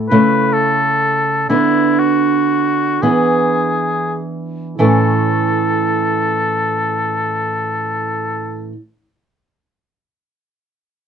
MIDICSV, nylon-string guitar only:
0, 0, Header, 1, 2, 480
1, 0, Start_track
1, 0, Key_signature, 3, "major"
1, 0, Tempo, 917431
1, 780, Time_signature, 6, 3, 24, 8
1, 780, Tempo, 1008403
1, 1260, Tempo, 1081081
1, 1740, Tempo, 1214575
1, 2220, Tempo, 1134216
1, 4878, End_track
2, 0, Start_track
2, 0, Title_t, "Nylon-string guitar"
2, 0, Program_c, 0, 24
2, 60, Note_on_c, 0, 49, 39
2, 63, Note_on_c, 0, 57, 29
2, 64, Note_on_c, 0, 64, 31
2, 761, Note_off_c, 0, 49, 0
2, 761, Note_off_c, 0, 57, 0
2, 761, Note_off_c, 0, 64, 0
2, 783, Note_on_c, 0, 50, 40
2, 784, Note_on_c, 0, 62, 29
2, 787, Note_on_c, 0, 59, 26
2, 1477, Note_off_c, 0, 50, 0
2, 1477, Note_off_c, 0, 59, 0
2, 1477, Note_off_c, 0, 62, 0
2, 1493, Note_on_c, 0, 62, 24
2, 1496, Note_on_c, 0, 52, 31
2, 1496, Note_on_c, 0, 59, 25
2, 2205, Note_off_c, 0, 62, 0
2, 2206, Note_off_c, 0, 52, 0
2, 2206, Note_off_c, 0, 59, 0
2, 2217, Note_on_c, 0, 52, 25
2, 2219, Note_on_c, 0, 45, 29
2, 2220, Note_on_c, 0, 64, 24
2, 2221, Note_on_c, 0, 61, 23
2, 2222, Note_on_c, 0, 69, 23
2, 2222, Note_on_c, 0, 73, 24
2, 3881, Note_off_c, 0, 45, 0
2, 3881, Note_off_c, 0, 52, 0
2, 3882, Note_off_c, 0, 61, 0
2, 3883, Note_off_c, 0, 64, 0
2, 3884, Note_off_c, 0, 69, 0
2, 3885, Note_off_c, 0, 73, 0
2, 4878, End_track
0, 0, End_of_file